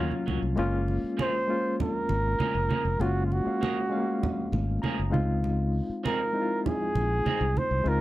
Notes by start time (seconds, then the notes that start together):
Already playing: F#3 A#3 C#4 F4 F#4
0.11 high conga
0.26 C#2 F#3 A#3 C#4 F#4, high conga
0.42 C2
0.56 F#1 G#3 A#3 C#4 F4, muted conga
0.88 muted conga
1.04 muted fingered electric bass stroke
1.17 F3 A#3 C#4 G#4, high conga
1.21 C5
1.48 G#3 A#3 C#4 F4
1.80 A#4, muted conga, low conga
2.09 G#1, muted conga
2.39 F3 A#3 C#4 G#4, muted fingered electric bass stroke, high conga
2.55 F1
2.69 F3 A#3 C#4 G#4, high conga
2.85 F1
2.99 F#1 G#3 A#3 C#4 F4, muted conga
3.03 F#4
3.26 F4
3.32 F#4, muted conga
3.45 G#3 A#3 C#4 F5, muted fingered electric bass stroke
3.61 F3 A#3 C#4 G#4, high conga
3.90 G#3 A3 C#4 F5
3.97 A#3
4.23 muted conga, low conga
4.52 G#1, muted conga
4.82 F3 A#3 C#4 G#4 A#5, muted fingered electric bass stroke, high conga
4.99 F#1
5.10 C#2 G#3 C4 D#4 F4 F5, high conga
5.44 muted conga
5.89 muted fingered electric bass stroke
6.04 F3 C4 D#4 G#4 A#4, high conga
6.33 G#3 C4 D#4 E4
6.42 F4
6.66 G#4, muted conga, low conga
6.95 A#1, muted conga
7.26 F3 C4 D#4 G#4, muted fingered electric bass stroke, high conga
7.41 C2
7.57 C5, high conga
7.71 C2
7.84 C#2 G#3 C4 D#4 F4, muted conga
7.89 A#4